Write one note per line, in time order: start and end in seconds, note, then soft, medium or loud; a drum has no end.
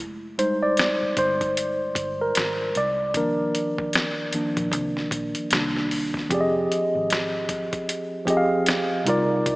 0.00 0.58 F1 medium
0.38 1.52 G3 medium
0.38 1.53 G#3 soft
0.38 1.53 D#4 medium
0.38 0.62 C5 medium
0.38 closed hi-hat medium
0.63 1.19 D5 medium
0.77 snare loud
0.77 closed hi-hat medium
1.03 muted fingered electric bass stroke soft
1.17 1.92 G1 medium
1.17 2.23 C5 medium
1.17 kick medium
1.17 closed hi-hat medium
1.41 kick medium
1.41 closed hi-hat soft
1.57 closed hi-hat medium
1.95 2.31 G1 medium
1.95 kick medium
1.95 closed hi-hat medium
2.21 2.77 A#4 medium
2.35 2.72 G#1 medium
2.35 snare loud
2.35 closed hi-hat medium
2.75 3.50 C2 medium
2.75 3.17 D5 loud
2.75 closed hi-hat medium
3.14 4.33 D#3 medium
3.14 4.33 F3 medium
3.14 4.33 A#3 medium
3.14 4.34 D4 medium
3.14 5.09 A#4 medium
3.14 kick loud
3.14 closed hi-hat medium
3.55 closed hi-hat medium
3.78 kick medium
3.93 snare loud
3.93 closed hi-hat medium
4.33 4.69 D#3 soft
4.33 4.69 F3 soft
4.33 4.69 A#3 soft
4.33 4.69 D4 medium
4.33 muted fingered electric bass stroke soft
4.33 closed hi-hat medium
4.57 4.73 A#1 medium
4.57 kick medium
4.57 closed hi-hat soft
4.72 5.08 C2 medium
4.72 kick medium
4.72 closed hi-hat medium
4.97 snare soft
5.11 5.33 A#1 medium
5.11 kick medium
5.11 closed hi-hat medium
5.35 closed hi-hat soft
5.51 6.26 C2 medium
5.51 6.07 D#3 medium
5.51 6.07 A#3 soft
5.51 6.08 D4 medium
5.51 snare loud
5.51 closed hi-hat medium
5.76 snare soft
5.91 open hi-hat soft
6.14 kick medium
6.14 snare soft
6.29 6.66 F1 loud
6.29 7.51 F3 medium
6.29 7.52 C4 medium
6.29 7.52 G4 medium
6.29 7.53 G#4 medium
6.29 kick loud
6.29 closed hi-hat medium
6.34 6.40 D5 medium
6.41 7.57 D#5 medium
6.72 closed hi-hat medium
6.95 7.69 G#1 medium
7.10 snare medium
7.10 closed hi-hat medium
7.49 kick medium
7.49 closed hi-hat medium
7.73 kick medium
7.73 closed hi-hat soft
7.89 closed hi-hat medium
8.25 9.05 F3 medium
8.25 9.06 C4 medium
8.25 9.06 G4 medium
8.25 9.07 G#4 medium
8.25 kick medium
8.25 closed hi-hat medium
8.30 8.36 D#5 medium
8.37 9.11 F5 medium
8.66 snare loud
8.66 closed hi-hat medium
9.04 9.42 C2 medium
9.04 9.56 C3 medium
9.04 9.56 G3 medium
9.04 9.56 D#4 medium
9.04 9.56 F4 medium
9.04 closed hi-hat medium
9.08 9.56 A#4 medium
9.08 9.56 D5 loud
9.46 9.56 C2 medium
9.46 kick loud
9.46 closed hi-hat medium